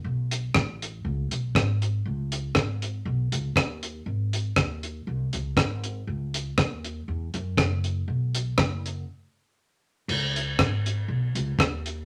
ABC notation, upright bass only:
X:1
M:4/4
L:1/8
Q:"Swing" 1/4=120
K:C#m
V:1 name="Upright bass" clef=bass
B,,,2 A,,,2 C,, B,,, G,,,2 | C,,2 G,,,2 B,,, C,, D,,2 | G,,,2 D,,2 ^B,,, C,, G,,,2 | C,,2 D,,2 E,, F,, F,,,2 |
B,,,2 F,,,2 z4 | C,,2 G,,,2 B,,, C,, D,,2 |]